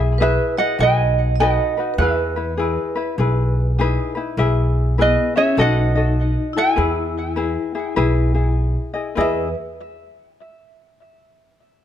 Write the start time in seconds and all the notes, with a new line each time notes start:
Already playing: B1 E5
0.00 E4 G#4
0.18 E4 G#4 B4 E5
0.23 B4
0.58 E4 G#4 D#5 F#5
0.79 B1 D#4 F#4 A4 D#5 G#5
0.83 B4 D#5
1.36 D#5
1.40 D#4 F#4 A4 B4 D#5 F#5
1.77 D#4 F#4 B4
1.94 B4
1.98 E2 E4 G#4 B4 E5
2.36 E4 B4
2.57 E4 G#4 B4
2.96 E4 B4
3.18 B1 E4 G#4 B4
3.79 D#4 E4 G#4 B4
4.15 D#4 E4 B4
4.37 B1 E4 G#4 B4 E5
4.98 B3 E4 G#4 B4 D#5
5.36 C#4 E4 G#4 C#5 E5
5.57 B1 D#4 F#4 A4 B4 D#5 F#5
5.95 F#4 A4 D#5
6.53 E4 A4
6.57 F#4 E5 G#5
6.76 E2 E4 G#4 B4
7.36 E4 G#4 B4
7.75 E4 G#4
7.96 B1 E4 G#4 B4
8.34 E4 G#4
8.94 E4 G#4 D#5
9.15 E2 E4 G#4 B4 D#5
9.21 E5